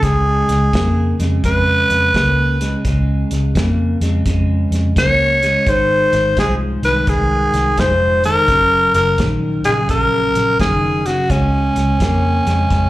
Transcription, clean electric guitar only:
0.03 C#3 G#3
0.73 C#3 A#3
1.19 C#3 G#3
1.44 C#3 G#3
2.15 C#3 A#3
2.61 C#3 G#3
2.85 C#3 G#3
3.55 C#3 A#3
4.02 C#3 G#3
4.26 C#3 G#3
4.97 C#3 A#3
5.43 C#3 G#3
5.67 G#2 D#3
6.37 G#2 F3
6.84 G#2 D#3
7.08 G#2 D#3
7.78 G#2 F3
8.25 G#2 D#3
8.49 F#2 C#3
9.19 F#2 D#3
9.66 F#2 C#3
9.90 F#2 C#3
10.60 F#2 D#3
11.06 F#2 C#3
11.31 C#3 G#3
12.01 C#3 A#3
12.47 C#3 G#3
12.71 C#3 G#3

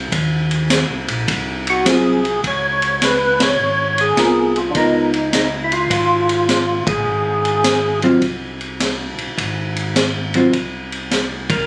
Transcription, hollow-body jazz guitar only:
1.85 F#3 C4 F4
4.18 B3 F4 A#4
4.75 B3 F4 A#4
8.03 F#3 C4 F4
10.35 F#3 C4 F4

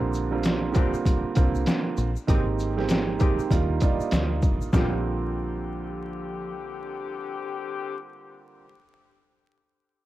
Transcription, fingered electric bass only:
Already playing: A#1
1.37 C2
1.98 A#1
2.29 G#1
3.51 D#2
4.12 D2
4.43 A1
4.73 A#1

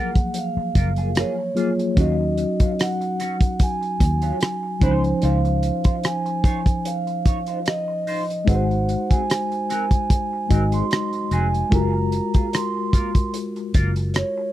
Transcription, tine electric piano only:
Already playing: F3 F#3 A#3 G#4
1.55 F#3 A#3 F4 G#4
1.95 F#3 C#4 D#4 F#4
4.80 E3 C#4 D#4 C5
4.87 F3
8.45 G#3 D#4 F#4 B4
8.55 C5
10.49 G#3 D#4 F#4 D#5
11.70 G#3 F4 F#4 A#4

